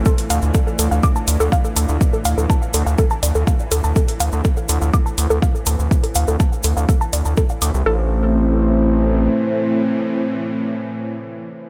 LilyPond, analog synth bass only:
\new Staff \with { instrumentName = "Analog synth bass" } { \clef bass \time 4/4 \key a \minor \tempo 4 = 123 r8 d,16 d,16 r8 d,16 d,16 r8 d,16 d,16 r8 d,16 d,16 | r8 d,16 d,16 r8 d,16 d,16 r8 d,16 d,16 r8 d,16 d,16 | r8 d,16 d,16 r8 d,16 d,16 r8 d,16 d,16 r8 d,16 d,16 | r8 d,16 d,16 r8 d,16 d,16 r8 d,16 d,16 r8 d,16 c,16 |
a,,2. r4 | r1 | }